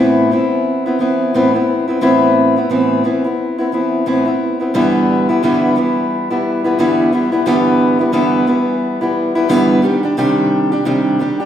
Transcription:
steel-string acoustic guitar
Already playing: A2 E3 B3 C4 E4
0.31 E3 B3 C4 E4
0.86 B3 C4 E4
0.99 E3 B3 C4 E4
1.34 A2 E3 B3 C4 E4
1.54 B3 C4 E4
1.88 B3 C4 E4
2.01 A2 E3 B3 C4 E4
2.56 B3 C4 E4
2.70 A2 E3 B3 C4 E4
3.04 E3 B3 C4 E4
3.24 B3 C4 E4
3.58 B3 C4 E4
3.72 E3 B3 C4 E4
4.06 A2 E3 B3 C4 E4
4.25 B3 C4 E4
4.60 B3 C4 E4
4.74 G2 D3 E3 G3 B3 E4
5.29 E3 G3 B3 E4
5.43 G2 D3 E3 G3 B3 E4
5.76 E3 G3 B3 E4
6.30 E3 G3 B3 E4
6.64 E3 G3 B3 E4
6.79 G2 D3 E3 G3 B3 E4
7.12 E3 G3 B3 E4
7.32 E3 G3 B3 E4
7.46 G2 D3 E3 G3 B3 E4
7.99 E3 G3 B3 E4
8.12 G2 D3 E3 G3 B3 E4
8.47 E3 G3 B3 E4
9.01 E3 G3 B3 E4
9.35 E3 G3 B3 E4
9.48 G2 D3 E3 G3 B3 E4
9.82 D#3 G3 D4 G4
10.03 G3 D4 G4
10.17 C3 D#3 G3 D4 G4
10.72 G3 D4 G4
10.85 C3 D#3 G3 D4 G4
11.19 D#3 G3 D4 G4
11.40 G3 D4 G4

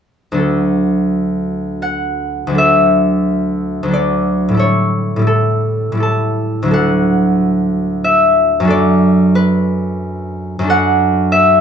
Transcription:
harp
0.32 D2 F#3 D4
0.38 A4
1.82 F#5
2.47 D2 F#3
2.53 D4 A4
2.58 E5
3.83 D2 F#3
3.88 D4 A4
3.93 D5
4.49 A2 G3
4.54 E4 A4
4.59 C#5
5.16 A2 G3
5.22 E4
5.27 A4
5.92 A2 G3
5.97 E4 A4
6.03 A5
6.62 D2 F#3
6.68 D4 A4
6.73 F#5
8.04 E5
8.60 F#2 F#3
8.65 D4 A4
8.70 D5
9.35 B4
10.59 F#2 F#3
10.64 D4 A4
10.70 F#5
11.32 E5

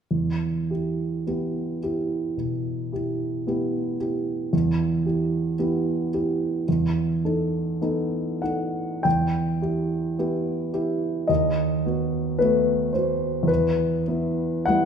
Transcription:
grand piano
0.11 E2
0.70 E4 G4
1.27 B3 E4 G4
1.83 E4 G4
2.37 B2
2.92 E4 G4
3.47 B3 E4 G4
4.00 E4 G4
4.53 E2
5.06 E4 G4
5.59 B3 E4 G4
6.14 E4 G4
6.69 E2
7.25 D#4 A4
7.81 B3 D#4 A4
8.42 D#4 A4 F#5
9.03 E2 G5
9.62 E4 G4
10.19 B3 E4 G4
10.73 E4 G4
11.27 D#2 D#5
11.86 B3 F#4
12.39 A3 B3 F#4 B4
12.93 B3 F#4 C5
13.43 E2
13.48 B4
14.08 B3 E4
14.65 G3 B3 E4 F#5

